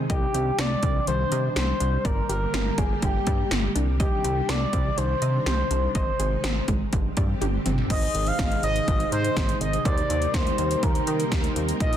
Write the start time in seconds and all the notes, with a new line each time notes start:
Already playing: C3 D#3
0.10 C2 G3 D4 G4 D#5, kick, closed hi-hat
0.34 C2 G4, closed hi-hat
0.58 C2 D4 D5, snare, closed hi-hat
0.83 C2 C4, kick, closed hi-hat
1.07 C2 D#3 C5, closed hi-hat
1.32 C3 D#5, closed hi-hat
1.56 C2 G4 C5, snare, closed hi-hat
1.80 C2 D4, closed hi-hat
2.05 G1 D3 A#3 G4 A#4 D5, kick, closed hi-hat
2.29 G1 G4 A#4, closed hi-hat
2.53 G1 A#3, snare, closed hi-hat
2.78 G1 G3 G#4, kick, closed hi-hat
3.02 G1 D3 G4, kick, closed hi-hat
3.27 G2 D5, kick, closed hi-hat
3.51 G1 G4, snare, closed hi-hat
3.75 C2 C3 D#3 D4, closed hi-hat
4.00 G4 D#5, kick, closed hi-hat
4.24 C2 G4, closed hi-hat
4.49 C2 D4 D5, snare, closed hi-hat
4.73 C2 C4, kick, closed hi-hat
4.97 C2 D#3 C5, closed hi-hat
5.22 C3 D#5, closed hi-hat
5.46 C2 G4 C5, snare, closed hi-hat
5.71 C2 D4, closed hi-hat
5.95 G#1 G#3 D#4 C5 D#5, kick, closed hi-hat
6.19 G#1 G#4, closed hi-hat
6.44 G#1 C4, snare, closed hi-hat
6.68 G#1 G#3, kick, closed hi-hat
6.93 G1 D3 G3 C4 G4, kick, closed hi-hat
7.17 G2 D5, kick, closed hi-hat
7.41 G1 G4, closed hi-hat, high tom
7.66 G1 C4, closed hi-hat, mid tom
7.78 floor tom
7.90 G#1 C3 D#3 G#3 D#4 G#4 C5 D#5, kick, closed hi-hat, crash
8.02 closed hi-hat
8.15 G#1, closed hi-hat
8.27 F5, closed hi-hat
8.39 G#1, kick, snare, closed hi-hat
8.52 closed hi-hat
8.63 G#1 D#5, closed hi-hat
8.76 closed hi-hat
8.88 G#1, kick, closed hi-hat
9.00 closed hi-hat
9.12 G#2 C5, closed hi-hat
9.24 closed hi-hat
9.37 G#1, kick, snare, closed hi-hat
9.49 closed hi-hat
9.61 G#1 D#5, closed hi-hat
9.73 closed hi-hat
9.85 D#2 G3 A#3 D#4 G4 A#4 C5 D5, kick, closed hi-hat
9.98 closed hi-hat
10.10 D#2, closed hi-hat
10.22 closed hi-hat
10.34 D#2 C5, kick, snare, closed hi-hat
10.47 closed hi-hat
10.58 D#2, closed hi-hat
10.71 closed hi-hat
10.83 D#2 A#4, kick, closed hi-hat
10.95 closed hi-hat
11.07 D#3, closed hi-hat
11.20 closed hi-hat
11.32 D#2, kick, snare, closed hi-hat
11.44 closed hi-hat
11.56 D#2, closed hi-hat
11.69 closed hi-hat
11.80 A#1 D#3 F3 D#4 F4 A#4 D#5, kick, closed hi-hat
11.93 closed hi-hat